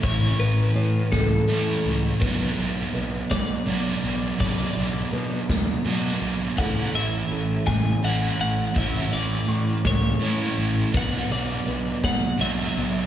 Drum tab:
HH |xxxxxx|xxxxxx|xxxxxx|xxxxxx|
SD |---o--|---o--|---o--|---o--|
BD |o--o--|o--o--|o--o--|o--o--|

HH |xxxxxx|xxxxxx|
SD |---o--|---o--|
BD |o--o--|o--o--|